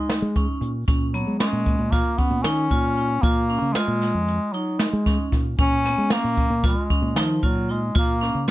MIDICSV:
0, 0, Header, 1, 5, 480
1, 0, Start_track
1, 0, Tempo, 524017
1, 802, Time_signature, 9, 3, 24, 8
1, 7793, End_track
2, 0, Start_track
2, 0, Title_t, "Vibraphone"
2, 0, Program_c, 0, 11
2, 0, Note_on_c, 0, 63, 69
2, 161, Note_off_c, 0, 63, 0
2, 332, Note_on_c, 0, 61, 63
2, 637, Note_off_c, 0, 61, 0
2, 804, Note_on_c, 0, 61, 80
2, 957, Note_off_c, 0, 61, 0
2, 1045, Note_on_c, 0, 59, 72
2, 1197, Note_off_c, 0, 59, 0
2, 1285, Note_on_c, 0, 61, 66
2, 1591, Note_off_c, 0, 61, 0
2, 1764, Note_on_c, 0, 65, 73
2, 1916, Note_off_c, 0, 65, 0
2, 2005, Note_on_c, 0, 61, 67
2, 2156, Note_off_c, 0, 61, 0
2, 2245, Note_on_c, 0, 63, 74
2, 2397, Note_off_c, 0, 63, 0
2, 2486, Note_on_c, 0, 65, 70
2, 2791, Note_off_c, 0, 65, 0
2, 2967, Note_on_c, 0, 65, 78
2, 3118, Note_off_c, 0, 65, 0
2, 3203, Note_on_c, 0, 61, 67
2, 3354, Note_off_c, 0, 61, 0
2, 3442, Note_on_c, 0, 65, 76
2, 3748, Note_off_c, 0, 65, 0
2, 4162, Note_on_c, 0, 63, 67
2, 4468, Note_off_c, 0, 63, 0
2, 4637, Note_on_c, 0, 61, 69
2, 4945, Note_off_c, 0, 61, 0
2, 5118, Note_on_c, 0, 61, 87
2, 5271, Note_off_c, 0, 61, 0
2, 5363, Note_on_c, 0, 59, 70
2, 5516, Note_off_c, 0, 59, 0
2, 5602, Note_on_c, 0, 61, 72
2, 5909, Note_off_c, 0, 61, 0
2, 6079, Note_on_c, 0, 65, 70
2, 6233, Note_off_c, 0, 65, 0
2, 6323, Note_on_c, 0, 61, 71
2, 6476, Note_off_c, 0, 61, 0
2, 6561, Note_on_c, 0, 63, 80
2, 6715, Note_off_c, 0, 63, 0
2, 6804, Note_on_c, 0, 65, 70
2, 7112, Note_off_c, 0, 65, 0
2, 7282, Note_on_c, 0, 65, 88
2, 7437, Note_off_c, 0, 65, 0
2, 7524, Note_on_c, 0, 61, 72
2, 7679, Note_off_c, 0, 61, 0
2, 7793, End_track
3, 0, Start_track
3, 0, Title_t, "Bass clarinet"
3, 0, Program_c, 1, 71
3, 0, Note_on_c, 1, 56, 94
3, 555, Note_off_c, 1, 56, 0
3, 1035, Note_on_c, 1, 54, 74
3, 1260, Note_off_c, 1, 54, 0
3, 1276, Note_on_c, 1, 56, 97
3, 1754, Note_on_c, 1, 58, 91
3, 1768, Note_off_c, 1, 56, 0
3, 1993, Note_on_c, 1, 59, 87
3, 2007, Note_off_c, 1, 58, 0
3, 2223, Note_on_c, 1, 61, 99
3, 2237, Note_off_c, 1, 59, 0
3, 2948, Note_on_c, 1, 58, 98
3, 2962, Note_off_c, 1, 61, 0
3, 3416, Note_on_c, 1, 56, 101
3, 3430, Note_off_c, 1, 58, 0
3, 4147, Note_on_c, 1, 54, 78
3, 4161, Note_off_c, 1, 56, 0
3, 4389, Note_on_c, 1, 56, 64
3, 4403, Note_off_c, 1, 54, 0
3, 4866, Note_off_c, 1, 56, 0
3, 5125, Note_on_c, 1, 61, 109
3, 5612, Note_on_c, 1, 58, 105
3, 5626, Note_off_c, 1, 61, 0
3, 6085, Note_off_c, 1, 58, 0
3, 6106, Note_on_c, 1, 56, 86
3, 6583, Note_on_c, 1, 53, 76
3, 6597, Note_off_c, 1, 56, 0
3, 6835, Note_on_c, 1, 54, 78
3, 6849, Note_off_c, 1, 53, 0
3, 7066, Note_on_c, 1, 56, 73
3, 7080, Note_off_c, 1, 54, 0
3, 7295, Note_off_c, 1, 56, 0
3, 7315, Note_on_c, 1, 58, 96
3, 7748, Note_off_c, 1, 58, 0
3, 7793, End_track
4, 0, Start_track
4, 0, Title_t, "Fingered electric bass"
4, 0, Program_c, 2, 33
4, 203, Note_on_c, 2, 56, 86
4, 417, Note_off_c, 2, 56, 0
4, 559, Note_on_c, 2, 46, 80
4, 774, Note_off_c, 2, 46, 0
4, 806, Note_on_c, 2, 46, 81
4, 1124, Note_off_c, 2, 46, 0
4, 1161, Note_on_c, 2, 56, 75
4, 1267, Note_off_c, 2, 56, 0
4, 1399, Note_on_c, 2, 46, 76
4, 1612, Note_off_c, 2, 46, 0
4, 1639, Note_on_c, 2, 46, 88
4, 1852, Note_off_c, 2, 46, 0
4, 2114, Note_on_c, 2, 46, 77
4, 2222, Note_off_c, 2, 46, 0
4, 2230, Note_on_c, 2, 51, 76
4, 2447, Note_off_c, 2, 51, 0
4, 2478, Note_on_c, 2, 46, 75
4, 2904, Note_off_c, 2, 46, 0
4, 2960, Note_on_c, 2, 46, 97
4, 3278, Note_off_c, 2, 46, 0
4, 3314, Note_on_c, 2, 49, 75
4, 3421, Note_off_c, 2, 49, 0
4, 3551, Note_on_c, 2, 46, 70
4, 3766, Note_off_c, 2, 46, 0
4, 3795, Note_on_c, 2, 41, 74
4, 4009, Note_off_c, 2, 41, 0
4, 4518, Note_on_c, 2, 56, 81
4, 4730, Note_off_c, 2, 56, 0
4, 4877, Note_on_c, 2, 46, 76
4, 5090, Note_off_c, 2, 46, 0
4, 5118, Note_on_c, 2, 46, 77
4, 5438, Note_off_c, 2, 46, 0
4, 5477, Note_on_c, 2, 56, 74
4, 5584, Note_off_c, 2, 56, 0
4, 5718, Note_on_c, 2, 46, 75
4, 5931, Note_off_c, 2, 46, 0
4, 5955, Note_on_c, 2, 46, 87
4, 6171, Note_off_c, 2, 46, 0
4, 6430, Note_on_c, 2, 46, 74
4, 6541, Note_off_c, 2, 46, 0
4, 6555, Note_on_c, 2, 51, 79
4, 6771, Note_off_c, 2, 51, 0
4, 6807, Note_on_c, 2, 46, 64
4, 7233, Note_off_c, 2, 46, 0
4, 7287, Note_on_c, 2, 46, 86
4, 7607, Note_off_c, 2, 46, 0
4, 7646, Note_on_c, 2, 49, 72
4, 7753, Note_off_c, 2, 49, 0
4, 7793, End_track
5, 0, Start_track
5, 0, Title_t, "Drums"
5, 87, Note_on_c, 9, 38, 89
5, 87, Note_on_c, 9, 42, 72
5, 179, Note_off_c, 9, 38, 0
5, 179, Note_off_c, 9, 42, 0
5, 328, Note_on_c, 9, 36, 66
5, 329, Note_on_c, 9, 42, 53
5, 420, Note_off_c, 9, 36, 0
5, 421, Note_off_c, 9, 42, 0
5, 565, Note_on_c, 9, 42, 55
5, 657, Note_off_c, 9, 42, 0
5, 806, Note_on_c, 9, 36, 100
5, 807, Note_on_c, 9, 42, 82
5, 898, Note_off_c, 9, 36, 0
5, 898, Note_off_c, 9, 42, 0
5, 1046, Note_on_c, 9, 42, 59
5, 1137, Note_off_c, 9, 42, 0
5, 1284, Note_on_c, 9, 38, 102
5, 1284, Note_on_c, 9, 42, 76
5, 1376, Note_off_c, 9, 38, 0
5, 1376, Note_off_c, 9, 42, 0
5, 1523, Note_on_c, 9, 36, 65
5, 1525, Note_on_c, 9, 42, 55
5, 1615, Note_off_c, 9, 36, 0
5, 1616, Note_off_c, 9, 42, 0
5, 1761, Note_on_c, 9, 38, 27
5, 1761, Note_on_c, 9, 42, 65
5, 1763, Note_on_c, 9, 36, 91
5, 1853, Note_off_c, 9, 38, 0
5, 1853, Note_off_c, 9, 42, 0
5, 1854, Note_off_c, 9, 36, 0
5, 2002, Note_on_c, 9, 36, 68
5, 2002, Note_on_c, 9, 42, 51
5, 2093, Note_off_c, 9, 36, 0
5, 2093, Note_off_c, 9, 42, 0
5, 2238, Note_on_c, 9, 38, 97
5, 2238, Note_on_c, 9, 42, 60
5, 2329, Note_off_c, 9, 38, 0
5, 2329, Note_off_c, 9, 42, 0
5, 2481, Note_on_c, 9, 36, 67
5, 2483, Note_on_c, 9, 42, 49
5, 2572, Note_off_c, 9, 36, 0
5, 2575, Note_off_c, 9, 42, 0
5, 2721, Note_on_c, 9, 42, 57
5, 2813, Note_off_c, 9, 42, 0
5, 2958, Note_on_c, 9, 42, 71
5, 2960, Note_on_c, 9, 36, 92
5, 3049, Note_off_c, 9, 42, 0
5, 3052, Note_off_c, 9, 36, 0
5, 3200, Note_on_c, 9, 42, 52
5, 3292, Note_off_c, 9, 42, 0
5, 3435, Note_on_c, 9, 38, 91
5, 3435, Note_on_c, 9, 42, 69
5, 3527, Note_off_c, 9, 38, 0
5, 3527, Note_off_c, 9, 42, 0
5, 3677, Note_on_c, 9, 38, 31
5, 3677, Note_on_c, 9, 42, 50
5, 3768, Note_off_c, 9, 38, 0
5, 3768, Note_off_c, 9, 42, 0
5, 3914, Note_on_c, 9, 42, 66
5, 4006, Note_off_c, 9, 42, 0
5, 4153, Note_on_c, 9, 42, 57
5, 4244, Note_off_c, 9, 42, 0
5, 4390, Note_on_c, 9, 38, 86
5, 4390, Note_on_c, 9, 42, 71
5, 4482, Note_off_c, 9, 38, 0
5, 4482, Note_off_c, 9, 42, 0
5, 4636, Note_on_c, 9, 38, 30
5, 4636, Note_on_c, 9, 42, 59
5, 4637, Note_on_c, 9, 36, 65
5, 4728, Note_off_c, 9, 38, 0
5, 4728, Note_off_c, 9, 42, 0
5, 4729, Note_off_c, 9, 36, 0
5, 4874, Note_on_c, 9, 38, 30
5, 4874, Note_on_c, 9, 42, 55
5, 4877, Note_on_c, 9, 36, 63
5, 4966, Note_off_c, 9, 38, 0
5, 4966, Note_off_c, 9, 42, 0
5, 4968, Note_off_c, 9, 36, 0
5, 5114, Note_on_c, 9, 42, 71
5, 5118, Note_on_c, 9, 36, 105
5, 5206, Note_off_c, 9, 42, 0
5, 5209, Note_off_c, 9, 36, 0
5, 5358, Note_on_c, 9, 38, 32
5, 5358, Note_on_c, 9, 42, 55
5, 5449, Note_off_c, 9, 38, 0
5, 5449, Note_off_c, 9, 42, 0
5, 5591, Note_on_c, 9, 38, 100
5, 5591, Note_on_c, 9, 42, 73
5, 5682, Note_off_c, 9, 38, 0
5, 5682, Note_off_c, 9, 42, 0
5, 5834, Note_on_c, 9, 42, 55
5, 5838, Note_on_c, 9, 36, 63
5, 5926, Note_off_c, 9, 42, 0
5, 5930, Note_off_c, 9, 36, 0
5, 6078, Note_on_c, 9, 38, 30
5, 6078, Note_on_c, 9, 42, 68
5, 6080, Note_on_c, 9, 36, 93
5, 6170, Note_off_c, 9, 38, 0
5, 6170, Note_off_c, 9, 42, 0
5, 6172, Note_off_c, 9, 36, 0
5, 6323, Note_on_c, 9, 36, 74
5, 6323, Note_on_c, 9, 42, 52
5, 6414, Note_off_c, 9, 36, 0
5, 6415, Note_off_c, 9, 42, 0
5, 6560, Note_on_c, 9, 38, 101
5, 6560, Note_on_c, 9, 42, 65
5, 6652, Note_off_c, 9, 38, 0
5, 6652, Note_off_c, 9, 42, 0
5, 6806, Note_on_c, 9, 36, 62
5, 6809, Note_on_c, 9, 42, 50
5, 6898, Note_off_c, 9, 36, 0
5, 6901, Note_off_c, 9, 42, 0
5, 7047, Note_on_c, 9, 42, 54
5, 7139, Note_off_c, 9, 42, 0
5, 7287, Note_on_c, 9, 42, 78
5, 7288, Note_on_c, 9, 36, 105
5, 7379, Note_off_c, 9, 36, 0
5, 7379, Note_off_c, 9, 42, 0
5, 7533, Note_on_c, 9, 38, 30
5, 7533, Note_on_c, 9, 42, 53
5, 7625, Note_off_c, 9, 38, 0
5, 7625, Note_off_c, 9, 42, 0
5, 7793, End_track
0, 0, End_of_file